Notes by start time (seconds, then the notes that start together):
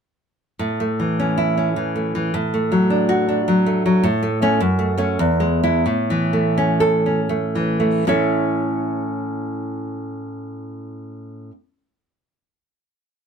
0.59 A2
0.80 A3
1.00 E3
1.20 C#4
1.38 E4
1.57 C#4
1.76 E3
1.96 A3
2.15 E3
2.34 A2
2.54 A3
2.72 F#3
2.90 D4
3.09 F#4
3.29 D4
3.48 F#3
3.66 A3
3.86 F#3
4.03 A2
4.23 A3
4.42 A3 C#4
4.61 F#2
4.79 A3
4.98 A3 C#4
5.19 E2
5.40 G#3
5.63 G#3 E4
5.86 A2
6.10 E3
6.33 A3
6.58 C#4
6.80 A4
7.06 C#4
7.29 A3
7.55 E3
7.80 A3
8.07 A2 C#4 E4 A4 C#5